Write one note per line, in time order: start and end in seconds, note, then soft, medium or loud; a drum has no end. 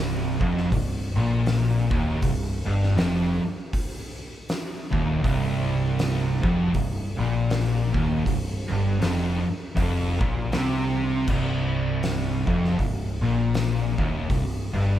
0.00 0.37 C1 medium
0.00 0.39 C2 loud
0.41 0.70 F1 medium
0.41 0.71 F2 loud
0.41 kick loud
0.57 snare soft
0.72 1.13 C1 medium
0.72 1.07 C2 medium
0.72 kick medium
0.72 open hi-hat medium
1.15 1.87 A#1 loud
1.15 1.89 A#2 loud
1.46 snare loud
1.46 open hi-hat medium
1.90 2.20 D#1 medium
1.90 2.21 D#2 loud
1.90 kick loud
2.22 2.63 C1 medium
2.22 2.58 C2 medium
2.22 kick medium
2.22 open hi-hat medium
2.65 2.95 G1 medium
2.65 2.96 G2 loud
2.83 snare soft
2.96 3.38 F1 medium
2.96 3.40 F2 loud
2.96 snare loud
2.96 open hi-hat medium
3.73 kick loud
3.73 open hi-hat medium
4.49 snare loud
4.49 open hi-hat medium
4.91 5.22 D#1 medium
4.91 5.22 D#2 loud
4.91 kick loud
5.23 6.39 C1 loud
5.23 6.41 C2 loud
5.23 kick loud
5.23 open hi-hat medium
5.99 snare loud
5.99 open hi-hat medium
6.43 6.72 F1 medium
6.43 6.74 F2 loud
6.43 kick loud
6.74 7.15 C1 loud
6.74 7.10 C2 medium
6.74 kick medium
6.74 open hi-hat medium
7.19 7.90 A#1 loud
7.19 7.93 A#2 loud
7.50 snare loud
7.50 open hi-hat medium
7.94 8.23 D#1 medium
7.94 8.25 D#2 loud
7.94 kick medium
8.26 8.67 C1 medium
8.26 8.61 C2 medium
8.26 kick medium
8.26 open hi-hat medium
8.71 8.99 G1 medium
8.71 9.01 G2 loud
9.02 9.42 F1 loud
9.02 9.44 F2 loud
9.02 snare loud
9.02 open hi-hat medium
9.76 10.17 F1 loud
9.76 10.19 F2 loud
9.76 kick loud
9.76 open hi-hat medium
10.20 10.50 A#1 medium
10.20 10.51 A#2 loud
10.20 kick loud
10.52 11.24 C2 loud
10.52 11.27 C3 loud
10.52 snare loud
10.52 open hi-hat medium
11.27 12.43 C1 medium
11.27 12.46 C2 loud
11.27 kick loud
11.27 crash loud
12.03 snare loud
12.03 open hi-hat medium
12.46 12.76 F1 medium
12.46 12.78 F2 loud
12.46 kick medium
12.65 snare soft
12.78 13.19 C1 loud
12.78 13.14 C2 medium
12.78 kick medium
12.78 open hi-hat medium
13.21 13.94 A#1 medium
13.21 13.97 A#2 loud
13.54 snare loud
13.54 open hi-hat medium
13.98 14.28 D#1 medium
13.98 14.29 D#2 loud
13.98 kick loud
14.30 14.71 C1 medium
14.30 14.65 C2 medium
14.30 kick loud
14.30 open hi-hat medium
14.73 14.99 G1 medium
14.73 14.99 G2 loud